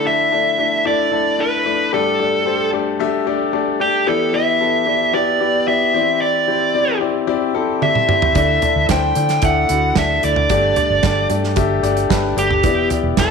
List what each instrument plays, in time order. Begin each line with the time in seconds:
Already playing: grand piano D3 A3 D4 E4 D5
0.05 grand piano A3 D4 E4 A4, lead electric guitar E5
0.32 grand piano A3 D4 E4 D5
0.58 grand piano A3 D4 E4 D5
0.85 grand piano A3 D4 E4 D5, lead electric guitar D5
1.12 grand piano A3 D4 E4 A4
1.39 grand piano A3 D4 E4 D5, lead electric guitar B4
1.66 grand piano A3 D4 E4 D5
1.93 grand piano G2 A3 D4 G4 D5, lead electric guitar A4
2.19 grand piano A3 D4 G4 D5
2.45 grand piano A3 D4 G4 C5
2.72 grand piano A3 D4 G4 D5
3.00 grand piano A3 D4 G4 E5
3.27 grand piano A3 D4 G4 D5
3.53 grand piano A3 D4 G4 D5
3.80 grand piano A3 D4 G4 D5, lead electric guitar G4
4.07 grand piano E3 B3 E4 G4 D5, lead electric guitar A4
4.33 grand piano B3 E4 G4 D5, lead electric guitar E5
4.61 grand piano B3 E4 G4 A4
4.87 grand piano B3 E4 G4 D5
5.13 grand piano B3 E4 G4 D5, lead electric guitar D5
5.40 grand piano B3 E4 G4 D5
5.67 grand piano B3 E4 G4 D5, lead electric guitar E5
5.94 grand piano E3 C4 E4 G4 D5
6.22 lead electric guitar D5
6.47 grand piano C4 E4 G4 D5
6.74 grand piano C4 E4 G4 D5
7.00 grand piano C4 E4 G4 D5
7.27 grand piano C4 E4 G4 D5
7.54 grand piano C4 E4 G4 A4
7.82 grand piano C4 E4 G4 D5, lead electric guitar E5, high tom
7.95 mid tom
8.08 grand piano C4 E4 G4 D5, mid tom
8.22 floor tom
8.35 fingered electric bass D2, grand piano D3 A3 D4 E4 D5, lead electric guitar E5, kick, closed hi-hat
8.61 grand piano A3 D4 E4 D5, closed hi-hat, floor tom
8.76 fingered electric bass D2
8.89 fingered electric bass D2, grand piano A3 D4 E4 C5, lead electric guitar G5, kick, snare, closed hi-hat
9.15 fingered electric bass D3, grand piano A3 D4 E4 D5, closed hi-hat
9.29 snare, closed hi-hat
9.42 fingered electric bass D2, grand piano A3 D4 E4 E5, lead electric guitar F#5, kick, closed hi-hat
9.69 fingered electric bass D2, grand piano A3 D4 E4 F#4, closed hi-hat
9.96 fingered electric bass D2, grand piano A3 D4 E4 D5, lead electric guitar E5, kick, snare, closed hi-hat
10.23 fingered electric bass D2, grand piano A3 D4 E4 D5, lead electric guitar D5, closed hi-hat
10.36 floor tom
10.50 fingered electric bass G1, grand piano G2 A3 D4 G4 D5, kick, closed hi-hat
10.76 grand piano A3 D4 G4 D5, closed hi-hat, floor tom
10.90 fingered electric bass G1
11.03 fingered electric bass G1, grand piano A3 D4 G4 D5, kick, snare, closed hi-hat
11.29 fingered electric bass G2, grand piano A3 D4 G4 D5, closed hi-hat
11.44 snare
11.56 fingered electric bass G1, grand piano A3 D4 G4 E5, kick, closed hi-hat
11.83 fingered electric bass G1, grand piano A3 D4 G4 D5, closed hi-hat
11.97 closed hi-hat
12.09 fingered electric bass G1, grand piano A3 D4 G4 B4, kick, snare, closed hi-hat
12.36 fingered electric bass G1, grand piano A3 D4 G4 D5, lead electric guitar G4, closed hi-hat
12.51 floor tom
12.63 fingered electric bass E1, grand piano E3 B3 E4 G4 D5, kick, closed hi-hat
12.90 grand piano B3 E4 G4 D5, closed hi-hat, floor tom
13.03 fingered electric bass E1
13.17 fingered electric bass E1, grand piano B3 E4 G4 A4, lead electric guitar A4, kick, snare, closed hi-hat